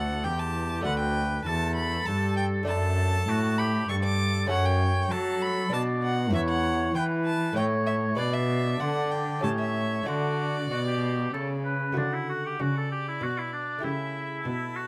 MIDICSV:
0, 0, Header, 1, 5, 480
1, 0, Start_track
1, 0, Key_signature, 2, "major"
1, 0, Tempo, 610376
1, 674, Time_signature, 3, 2, 24, 8
1, 6432, Tempo, 631579
1, 9312, Tempo, 619835
1, 11561, End_track
2, 0, Start_track
2, 0, Title_t, "Violin"
2, 0, Program_c, 0, 40
2, 0, Note_on_c, 0, 78, 86
2, 190, Note_on_c, 0, 79, 91
2, 202, Note_off_c, 0, 78, 0
2, 306, Note_on_c, 0, 81, 89
2, 317, Note_off_c, 0, 79, 0
2, 660, Note_off_c, 0, 81, 0
2, 665, Note_on_c, 0, 78, 98
2, 779, Note_off_c, 0, 78, 0
2, 784, Note_on_c, 0, 79, 88
2, 1138, Note_off_c, 0, 79, 0
2, 1143, Note_on_c, 0, 81, 97
2, 1379, Note_off_c, 0, 81, 0
2, 1384, Note_on_c, 0, 83, 95
2, 1622, Note_on_c, 0, 81, 99
2, 1633, Note_off_c, 0, 83, 0
2, 1857, Note_off_c, 0, 81, 0
2, 1862, Note_on_c, 0, 79, 90
2, 1925, Note_off_c, 0, 79, 0
2, 2106, Note_on_c, 0, 81, 111
2, 2815, Note_on_c, 0, 83, 91
2, 2827, Note_off_c, 0, 81, 0
2, 3054, Note_off_c, 0, 83, 0
2, 3059, Note_on_c, 0, 85, 103
2, 3108, Note_off_c, 0, 85, 0
2, 3178, Note_on_c, 0, 86, 105
2, 3533, Note_off_c, 0, 86, 0
2, 3541, Note_on_c, 0, 78, 111
2, 3662, Note_on_c, 0, 79, 97
2, 3674, Note_off_c, 0, 78, 0
2, 4022, Note_on_c, 0, 81, 95
2, 4034, Note_off_c, 0, 79, 0
2, 4263, Note_on_c, 0, 83, 96
2, 4275, Note_off_c, 0, 81, 0
2, 4502, Note_off_c, 0, 83, 0
2, 4510, Note_on_c, 0, 81, 93
2, 4573, Note_off_c, 0, 81, 0
2, 4747, Note_on_c, 0, 78, 86
2, 4979, Note_off_c, 0, 78, 0
2, 4989, Note_on_c, 0, 76, 104
2, 5035, Note_off_c, 0, 76, 0
2, 5106, Note_on_c, 0, 78, 96
2, 5458, Note_off_c, 0, 78, 0
2, 5470, Note_on_c, 0, 79, 93
2, 5533, Note_off_c, 0, 79, 0
2, 5707, Note_on_c, 0, 81, 88
2, 5945, Note_off_c, 0, 81, 0
2, 5948, Note_on_c, 0, 79, 87
2, 6011, Note_off_c, 0, 79, 0
2, 6185, Note_on_c, 0, 76, 82
2, 6248, Note_off_c, 0, 76, 0
2, 6427, Note_on_c, 0, 74, 100
2, 6546, Note_on_c, 0, 76, 89
2, 6558, Note_off_c, 0, 74, 0
2, 6905, Note_on_c, 0, 78, 89
2, 6916, Note_off_c, 0, 76, 0
2, 7141, Note_on_c, 0, 79, 78
2, 7152, Note_off_c, 0, 78, 0
2, 7379, Note_off_c, 0, 79, 0
2, 7383, Note_on_c, 0, 81, 86
2, 7432, Note_off_c, 0, 81, 0
2, 7508, Note_on_c, 0, 76, 86
2, 7865, Note_on_c, 0, 74, 88
2, 7877, Note_off_c, 0, 76, 0
2, 9073, Note_off_c, 0, 74, 0
2, 9319, Note_on_c, 0, 78, 58
2, 9799, Note_on_c, 0, 74, 62
2, 9811, Note_off_c, 0, 78, 0
2, 10756, Note_off_c, 0, 74, 0
2, 10760, Note_on_c, 0, 76, 59
2, 11227, Note_off_c, 0, 76, 0
2, 11235, Note_on_c, 0, 81, 68
2, 11561, Note_off_c, 0, 81, 0
2, 11561, End_track
3, 0, Start_track
3, 0, Title_t, "Oboe"
3, 0, Program_c, 1, 68
3, 0, Note_on_c, 1, 69, 62
3, 191, Note_on_c, 1, 67, 62
3, 203, Note_off_c, 1, 69, 0
3, 667, Note_off_c, 1, 67, 0
3, 672, Note_on_c, 1, 71, 62
3, 1156, Note_on_c, 1, 69, 69
3, 1168, Note_off_c, 1, 71, 0
3, 2104, Note_off_c, 1, 69, 0
3, 2108, Note_on_c, 1, 69, 65
3, 2588, Note_on_c, 1, 66, 74
3, 2599, Note_off_c, 1, 69, 0
3, 2832, Note_on_c, 1, 67, 74
3, 2844, Note_off_c, 1, 66, 0
3, 3065, Note_on_c, 1, 69, 68
3, 3077, Note_off_c, 1, 67, 0
3, 3535, Note_off_c, 1, 69, 0
3, 3540, Note_on_c, 1, 73, 65
3, 4023, Note_on_c, 1, 69, 68
3, 4035, Note_off_c, 1, 73, 0
3, 4511, Note_on_c, 1, 74, 70
3, 4523, Note_off_c, 1, 69, 0
3, 4859, Note_off_c, 1, 74, 0
3, 4993, Note_on_c, 1, 73, 64
3, 5471, Note_on_c, 1, 71, 64
3, 5483, Note_off_c, 1, 73, 0
3, 5954, Note_off_c, 1, 71, 0
3, 5961, Note_on_c, 1, 73, 68
3, 6440, Note_on_c, 1, 74, 65
3, 6452, Note_off_c, 1, 73, 0
3, 7392, Note_on_c, 1, 73, 58
3, 7403, Note_off_c, 1, 74, 0
3, 7873, Note_off_c, 1, 73, 0
3, 7877, Note_on_c, 1, 66, 58
3, 8301, Note_off_c, 1, 66, 0
3, 8357, Note_on_c, 1, 66, 63
3, 8410, Note_off_c, 1, 66, 0
3, 8472, Note_on_c, 1, 67, 67
3, 8826, Note_off_c, 1, 67, 0
3, 8830, Note_on_c, 1, 69, 68
3, 8939, Note_off_c, 1, 69, 0
3, 9067, Note_on_c, 1, 71, 65
3, 9307, Note_off_c, 1, 71, 0
3, 9317, Note_on_c, 1, 62, 64
3, 9440, Note_on_c, 1, 64, 57
3, 9452, Note_off_c, 1, 62, 0
3, 9560, Note_off_c, 1, 64, 0
3, 9566, Note_on_c, 1, 66, 63
3, 9681, Note_off_c, 1, 66, 0
3, 9693, Note_on_c, 1, 67, 62
3, 9811, Note_on_c, 1, 66, 71
3, 9822, Note_off_c, 1, 67, 0
3, 9925, Note_off_c, 1, 66, 0
3, 9937, Note_on_c, 1, 69, 60
3, 10041, Note_off_c, 1, 69, 0
3, 10046, Note_on_c, 1, 67, 62
3, 10159, Note_off_c, 1, 67, 0
3, 10176, Note_on_c, 1, 64, 62
3, 10292, Note_on_c, 1, 66, 70
3, 10303, Note_off_c, 1, 64, 0
3, 10408, Note_on_c, 1, 64, 62
3, 10420, Note_off_c, 1, 66, 0
3, 10517, Note_off_c, 1, 64, 0
3, 10522, Note_on_c, 1, 62, 66
3, 10754, Note_off_c, 1, 62, 0
3, 10761, Note_on_c, 1, 64, 65
3, 11476, Note_on_c, 1, 66, 65
3, 11488, Note_off_c, 1, 64, 0
3, 11561, Note_off_c, 1, 66, 0
3, 11561, End_track
4, 0, Start_track
4, 0, Title_t, "Lute"
4, 0, Program_c, 2, 24
4, 0, Note_on_c, 2, 38, 57
4, 0, Note_on_c, 2, 57, 47
4, 0, Note_on_c, 2, 64, 47
4, 0, Note_on_c, 2, 67, 48
4, 158, Note_off_c, 2, 38, 0
4, 188, Note_on_c, 2, 40, 52
4, 625, Note_off_c, 2, 57, 0
4, 629, Note_off_c, 2, 64, 0
4, 636, Note_off_c, 2, 67, 0
4, 636, Note_on_c, 2, 57, 52
4, 640, Note_off_c, 2, 40, 0
4, 651, Note_on_c, 2, 62, 49
4, 661, Note_on_c, 2, 66, 52
4, 672, Note_on_c, 2, 38, 55
4, 1120, Note_off_c, 2, 57, 0
4, 1122, Note_off_c, 2, 38, 0
4, 1150, Note_on_c, 2, 40, 58
4, 1598, Note_off_c, 2, 40, 0
4, 1632, Note_on_c, 2, 43, 57
4, 2066, Note_off_c, 2, 62, 0
4, 2069, Note_on_c, 2, 57, 53
4, 2071, Note_off_c, 2, 66, 0
4, 2078, Note_off_c, 2, 43, 0
4, 2082, Note_on_c, 2, 62, 55
4, 2092, Note_on_c, 2, 69, 53
4, 2105, Note_on_c, 2, 42, 57
4, 2552, Note_off_c, 2, 42, 0
4, 2581, Note_on_c, 2, 45, 60
4, 3015, Note_off_c, 2, 57, 0
4, 3031, Note_off_c, 2, 45, 0
4, 3061, Note_on_c, 2, 43, 60
4, 3498, Note_off_c, 2, 62, 0
4, 3503, Note_off_c, 2, 69, 0
4, 3508, Note_on_c, 2, 57, 53
4, 3510, Note_off_c, 2, 43, 0
4, 3519, Note_on_c, 2, 61, 54
4, 3531, Note_on_c, 2, 69, 58
4, 3545, Note_on_c, 2, 42, 61
4, 3991, Note_off_c, 2, 42, 0
4, 4022, Note_on_c, 2, 54, 64
4, 4455, Note_off_c, 2, 57, 0
4, 4460, Note_off_c, 2, 61, 0
4, 4467, Note_off_c, 2, 69, 0
4, 4470, Note_off_c, 2, 54, 0
4, 4480, Note_on_c, 2, 62, 52
4, 4492, Note_on_c, 2, 71, 54
4, 4503, Note_on_c, 2, 47, 56
4, 4950, Note_off_c, 2, 47, 0
4, 4954, Note_off_c, 2, 62, 0
4, 4958, Note_on_c, 2, 64, 56
4, 4962, Note_off_c, 2, 71, 0
4, 4972, Note_on_c, 2, 71, 53
4, 4982, Note_on_c, 2, 40, 58
4, 5432, Note_off_c, 2, 40, 0
4, 5465, Note_on_c, 2, 52, 59
4, 5909, Note_off_c, 2, 64, 0
4, 5916, Note_off_c, 2, 71, 0
4, 5919, Note_off_c, 2, 52, 0
4, 5920, Note_on_c, 2, 57, 49
4, 5933, Note_on_c, 2, 64, 51
4, 5943, Note_on_c, 2, 73, 50
4, 5954, Note_on_c, 2, 45, 57
4, 6405, Note_off_c, 2, 45, 0
4, 6405, Note_off_c, 2, 57, 0
4, 6407, Note_off_c, 2, 64, 0
4, 6410, Note_on_c, 2, 62, 49
4, 6416, Note_off_c, 2, 73, 0
4, 6420, Note_on_c, 2, 71, 50
4, 6432, Note_on_c, 2, 47, 60
4, 6875, Note_off_c, 2, 47, 0
4, 6910, Note_on_c, 2, 50, 55
4, 7345, Note_off_c, 2, 62, 0
4, 7350, Note_off_c, 2, 71, 0
4, 7352, Note_on_c, 2, 57, 47
4, 7356, Note_off_c, 2, 50, 0
4, 7366, Note_on_c, 2, 61, 45
4, 7377, Note_on_c, 2, 67, 46
4, 7389, Note_on_c, 2, 45, 51
4, 7831, Note_off_c, 2, 57, 0
4, 7837, Note_off_c, 2, 61, 0
4, 7840, Note_on_c, 2, 57, 44
4, 7841, Note_off_c, 2, 45, 0
4, 7851, Note_off_c, 2, 67, 0
4, 7854, Note_on_c, 2, 62, 46
4, 7862, Note_off_c, 2, 62, 0
4, 7865, Note_on_c, 2, 66, 49
4, 7877, Note_on_c, 2, 50, 52
4, 8325, Note_off_c, 2, 57, 0
4, 8328, Note_off_c, 2, 50, 0
4, 8356, Note_on_c, 2, 47, 54
4, 8805, Note_off_c, 2, 47, 0
4, 8835, Note_on_c, 2, 49, 49
4, 9277, Note_on_c, 2, 57, 38
4, 9278, Note_off_c, 2, 66, 0
4, 9285, Note_off_c, 2, 49, 0
4, 9287, Note_on_c, 2, 66, 38
4, 9311, Note_on_c, 2, 50, 43
4, 9765, Note_off_c, 2, 57, 0
4, 9766, Note_off_c, 2, 50, 0
4, 9796, Note_on_c, 2, 49, 43
4, 10245, Note_off_c, 2, 49, 0
4, 10272, Note_on_c, 2, 47, 40
4, 10711, Note_off_c, 2, 66, 0
4, 10719, Note_on_c, 2, 57, 38
4, 10723, Note_off_c, 2, 47, 0
4, 10731, Note_on_c, 2, 64, 37
4, 10741, Note_on_c, 2, 67, 38
4, 10753, Note_on_c, 2, 49, 43
4, 11202, Note_off_c, 2, 49, 0
4, 11236, Note_on_c, 2, 47, 45
4, 11561, Note_off_c, 2, 47, 0
4, 11561, Note_off_c, 2, 57, 0
4, 11561, Note_off_c, 2, 64, 0
4, 11561, Note_off_c, 2, 67, 0
4, 11561, End_track
5, 0, Start_track
5, 0, Title_t, "Cello"
5, 0, Program_c, 3, 42
5, 0, Note_on_c, 3, 38, 67
5, 195, Note_on_c, 3, 40, 68
5, 207, Note_off_c, 3, 38, 0
5, 674, Note_off_c, 3, 40, 0
5, 678, Note_on_c, 3, 38, 73
5, 1147, Note_off_c, 3, 38, 0
5, 1150, Note_on_c, 3, 40, 74
5, 1620, Note_off_c, 3, 40, 0
5, 1632, Note_on_c, 3, 43, 72
5, 2100, Note_off_c, 3, 43, 0
5, 2107, Note_on_c, 3, 42, 82
5, 2575, Note_off_c, 3, 42, 0
5, 2585, Note_on_c, 3, 45, 81
5, 3055, Note_off_c, 3, 45, 0
5, 3064, Note_on_c, 3, 43, 76
5, 3533, Note_off_c, 3, 43, 0
5, 3541, Note_on_c, 3, 42, 85
5, 3989, Note_off_c, 3, 42, 0
5, 4018, Note_on_c, 3, 54, 78
5, 4490, Note_off_c, 3, 54, 0
5, 4502, Note_on_c, 3, 47, 70
5, 4976, Note_on_c, 3, 40, 79
5, 4988, Note_off_c, 3, 47, 0
5, 5460, Note_off_c, 3, 40, 0
5, 5465, Note_on_c, 3, 52, 74
5, 5941, Note_off_c, 3, 52, 0
5, 5948, Note_on_c, 3, 45, 70
5, 6436, Note_on_c, 3, 47, 74
5, 6448, Note_off_c, 3, 45, 0
5, 6908, Note_off_c, 3, 47, 0
5, 6911, Note_on_c, 3, 50, 72
5, 7386, Note_on_c, 3, 45, 67
5, 7398, Note_off_c, 3, 50, 0
5, 7864, Note_off_c, 3, 45, 0
5, 7869, Note_on_c, 3, 50, 66
5, 8345, Note_off_c, 3, 50, 0
5, 8356, Note_on_c, 3, 47, 68
5, 8826, Note_off_c, 3, 47, 0
5, 8831, Note_on_c, 3, 49, 68
5, 9304, Note_off_c, 3, 49, 0
5, 9316, Note_on_c, 3, 50, 61
5, 9769, Note_off_c, 3, 50, 0
5, 9802, Note_on_c, 3, 49, 59
5, 10248, Note_off_c, 3, 49, 0
5, 10278, Note_on_c, 3, 47, 58
5, 10726, Note_off_c, 3, 47, 0
5, 10758, Note_on_c, 3, 49, 60
5, 11204, Note_off_c, 3, 49, 0
5, 11237, Note_on_c, 3, 47, 61
5, 11561, Note_off_c, 3, 47, 0
5, 11561, End_track
0, 0, End_of_file